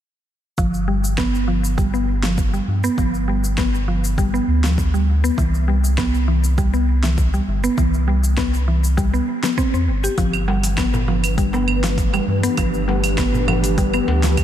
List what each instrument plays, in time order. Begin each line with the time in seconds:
0.58 sub bass G1, synth pluck F3, kick, cabasa
0.74 cabasa
0.88 synth pluck G3
1.04 cabasa
1.18 synth pluck B3, kick, snare, cabasa
1.35 cabasa
1.48 synth pluck F3
1.64 cabasa
1.78 synth pluck G3, kick, cabasa
1.94 synth pluck B3, cabasa
2.23 synth pluck F3, snare, cabasa
2.38 kick, cabasa
2.53 synth pluck G3, cabasa
2.68 sub bass G2
2.84 synth pluck B3, cabasa
2.98 sub bass G1, synth pluck F3, kick, cabasa
3.14 cabasa
3.28 synth pluck G3
3.44 cabasa
3.58 synth pluck B3, kick, snare, cabasa
3.75 cabasa
3.88 synth pluck F3
4.04 cabasa
4.18 synth pluck G3, kick, cabasa
4.34 synth pluck B3, cabasa
4.48 sub bass D2
4.64 synth pluck F3, snare, cabasa
4.78 kick, cabasa
4.94 synth pluck G3, cabasa
5.24 synth pluck B3, cabasa
5.38 sub bass C2, synth pluck E3, kick, cabasa
5.54 cabasa
5.68 synth pluck G3
5.84 cabasa
5.98 synth pluck B3, kick, snare, cabasa
6.14 cabasa
6.28 synth pluck E3
6.44 cabasa
6.58 synth pluck G3, kick, cabasa
6.74 synth pluck B3, cabasa
7.03 synth pluck E3, snare, cabasa
7.18 kick, cabasa
7.34 synth pluck G3, cabasa
7.48 sub bass G1
7.64 synth pluck B3, cabasa
7.78 sub bass C2, synth pluck E3, kick, cabasa
7.94 cabasa
8.08 synth pluck G3
8.24 cabasa
8.38 synth pluck B3, kick, snare, cabasa
8.54 cabasa
8.68 synth pluck E3
8.84 cabasa
8.97 synth pluck G3, kick, cabasa
9.14 synth pluck B3, cabasa
9.44 synth pluck B3, snare, cabasa
9.58 synth pluck C4, kick, cabasa
9.73 sub bass E2, synth pluck C4, cabasa
9.88 sub bass G1
10.04 synth pluck G4, cabasa
10.18 sub bass G1, analog synth pad E3, synth pluck F3, kick, open hi-hat, cabasa
10.34 cabasa, claves
10.48 synth pluck G3, darbuka tek
10.64 analog synth pad B4, open hi-hat, cabasa
10.78 synth pluck B3, kick, snare, open hi-hat, cabasa, claves
10.86 analog synth pad A3 D4
10.94 darbuka dum, cabasa
11.08 synth pluck F3, darbuka ka
11.24 open hi-hat, cabasa, claves
11.38 synth pluck G3, kick, open hi-hat, cabasa
11.53 synth pluck B3, darbuka tek, cabasa
11.68 claves
11.84 synth pluck F3, snare, open hi-hat, cabasa
11.98 kick, open hi-hat, cabasa
12.12 synth pluck G3, analog synth pad G4, darbuka ka, cabasa, claves
12.28 sub bass G2
12.43 synth pluck B3, open hi-hat, darbuka ka, cabasa
12.57 sub bass G1, synth pluck F3, kick, open hi-hat, cabasa, claves
12.74 cabasa
12.88 synth pluck G3, darbuka tek
13.04 open hi-hat, cabasa, claves
13.18 synth pluck B3, kick, snare, open hi-hat, cabasa
13.34 darbuka dum, cabasa
13.48 synth pluck F3, darbuka ka, darbuka tek, darbuka dum, claves
13.64 open hi-hat, cabasa
13.78 synth pluck G3, kick, open hi-hat, cabasa
13.93 synth pluck B3, cabasa, claves
14.08 sub bass D2, darbuka ka, darbuka tek
14.23 synth pluck F3, snare, open hi-hat, cabasa
14.37 kick, open hi-hat, cabasa, claves